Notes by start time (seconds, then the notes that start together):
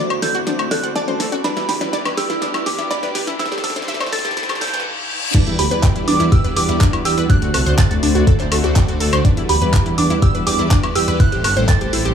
Already playing: D3 A3 C4 E4 F#4 D6, riser
0.10 D2 A3 F#4 C5 D5, closed hi-hat, high woodblock
0.22 D2 A3 F#4 A4 C5 D5 G6, snare, open hi-hat, high bongo
0.35 D2 F#4, closed hi-hat
0.47 A3 D4 F#4 C5 D5, snare, closed hi-hat
0.59 D2 A3 F#4 C5 D5, closed hi-hat, high woodblock
0.71 D2 A4 F#6, snare, open hi-hat, high bongo
0.83 D2 A3 F#4 C5 D5 F#5, closed hi-hat
0.96 D5 A5, snare, closed hi-hat
1.08 D2 A3 F#4 C5 D5, closed hi-hat, mid tom, high conga
1.20 D2 A3 F#4 A4 C5 D5, snare, open hi-hat
1.32 D2 F#4, closed hi-hat, high bongo, high conga
1.44 E3 G3 B3 D4 E4 G4 B4 D5 B5, snare, closed hi-hat
1.57 E2 G3 E4 B4 D5, snare, closed hi-hat
1.69 D2 G4 B5, snare, open hi-hat
1.81 E2 G3 E4 B4 D5, snare, closed hi-hat, high bongo, high conga
1.93 D5, snare, closed hi-hat
2.05 E2 G3 E4 B4 D5, snare, closed hi-hat, high woodblock
2.17 E2 G3 E4 G4 B4 D5 E6, snare, open hi-hat
2.30 E2 E4, snare, closed hi-hat
2.42 G3 D4 E4 B4 D5, snare, closed hi-hat, high bongo
2.54 E2 G3 E4 B4 D5, snare, closed hi-hat, high woodblock
2.66 E2 G4 D6, snare, open hi-hat
2.79 E2 G3 E4 B4 D5 E5, snare, closed hi-hat
2.91 D5 B5, snare, closed hi-hat, high bongo
3.03 E2 G3 E4 B4 D5, snare, closed hi-hat
3.15 E2 G3 E4 G4 B4 D5, snare, open hi-hat
3.27 E2 E4, snare, closed hi-hat, high conga
3.39 G3 A3 C4 E4 A4 C5 E6, snare, closed hi-hat
3.46 snare
3.52 A1 G3 E4 G4 A4 C5, snare, closed hi-hat, high bongo
3.58 snare
3.64 G1 A4 E6, snare, open hi-hat
3.70 snare
3.76 A1 G3 E4 A4 C5, snare, closed hi-hat, mid tom, high conga
3.82 snare
3.88 E5, snare, closed hi-hat
3.94 snare
4.00 A1 G3 E4 A4 C5, snare, closed hi-hat, high bongo, high woodblock
4.06 snare
4.12 A1 G3 E4 A4 C5 A6, snare, open hi-hat
4.19 snare
4.25 A1 G4, snare, closed hi-hat
4.31 snare
4.37 G3 E4 A4 C5, snare, closed hi-hat, reverse cymbal
4.43 snare
4.49 A1 G3 E4 G4 A4 C5, snare, closed hi-hat, high woodblock
4.55 snare
4.61 A1 G3 E4 A4 C5 G6, snare, open hi-hat, high bongo
4.67 snare
4.74 A1 G3 E4 A4 B4 G5, snare, closed hi-hat
4.80 snare
5.34 E3 G3 B3 D4 E4 F#4 G4 B4 D5, kick, closed hi-hat, crash
5.47 E2 G3 E4 B4 D5, closed hi-hat
5.59 D2 G4 B5, open hi-hat
5.71 E2 G3 E4 B4 D5, closed hi-hat
5.83 G4, kick, clap, closed hi-hat
5.96 E2 G3 E4 B4 D5, closed hi-hat
6.08 E2 G3 D4 E4 B4 D5 D6, open hi-hat
6.20 E2 E4, closed hi-hat
6.32 G3 E4 G4 B4 D5 E6, kick, closed hi-hat
6.44 E2 G3 E4 B4 D5, closed hi-hat
6.56 E2 G3 E4 G4 B4 D5 D6, open hi-hat
6.69 E2 G3 E4 B4 D5, closed hi-hat
6.81 G3 D4 E4 B4 D5, kick, clap, closed hi-hat
6.93 E2 E4, closed hi-hat, high woodblock
7.05 E2 G3 E4 G4 B4 D5 E6, open hi-hat
7.18 E2 G3 E4 B4 D5, closed hi-hat
7.30 D3 A3 C4 D4 E4 F#4 D5 F#6, kick, closed hi-hat
7.42 D2 A3 F#4 C5 D5, closed hi-hat
7.54 C2 A4 F#6, open hi-hat, high woodblock
7.66 D2 A3 F#4 C5 D5, closed hi-hat
7.78 A4 A6, kick, clap, closed hi-hat
7.91 D2 A3 F#4 C5 D5, closed hi-hat
8.03 D2 A3 D4 F#4 C5 D5, open hi-hat
8.15 D2 F#4, closed hi-hat
8.27 F#4 A4 C5 D5, kick, closed hi-hat
8.40 D2 A3 F#4 C5 D5, clap, closed hi-hat
8.52 D2 A3 F#4 A4 C5 D5, open hi-hat, high woodblock
8.64 D2 A3 F#4 C5 D5, closed hi-hat
8.76 A3 D4 F#4 C5 D5, kick, clap, closed hi-hat
8.88 D2 F#4, closed hi-hat
9.00 D2 A3 F#4 A4 C5 D5, open hi-hat
9.13 D2 A3 F#4 C5 D5, closed hi-hat, high woodblock
9.25 E3 G3 B3 D4 E4 G4 B4 D5, kick, closed hi-hat
9.37 E2 G3 E4 B4 D5, closed hi-hat
9.49 D2 G4 B5, open hi-hat
9.61 E2 G3 E4 B4 D5, closed hi-hat
9.74 G4, kick, clap, closed hi-hat
9.86 E2 G3 E4 B4 D5, closed hi-hat
9.98 E2 G3 D4 E4 B4 D5 D6, open hi-hat
10.10 E2 E4, closed hi-hat
10.22 G3 E4 G4 B4 D5 E6, kick, closed hi-hat
10.35 E2 G3 E4 B4 D5, closed hi-hat
10.47 E2 G3 E4 G4 B4 D5 D6, open hi-hat
10.59 E2 G3 E4 B4 D5, closed hi-hat
10.71 G3 D4 E4 B4 D5, kick, clap, closed hi-hat
10.83 E2 E4, closed hi-hat, high woodblock
10.96 E2 G3 E4 G4 B4 D5 E6, open hi-hat
11.08 E2 G3 E4 B4 D5, closed hi-hat
11.20 A3 C4 E4 A4 C5 F#6, kick, closed hi-hat
11.32 A1 G3 E4 G4 A4 C5, closed hi-hat
11.44 G1 A4 F#6, open hi-hat, high woodblock
11.57 A1 G3 E4 A4 C5, closed hi-hat
11.69 A4 A6, kick, clap, closed hi-hat
11.81 A1 G3 E4 G4 A4 C5, closed hi-hat
11.93 A1 G3 E4 A4 C5, open hi-hat
12.05 A1 G4, closed hi-hat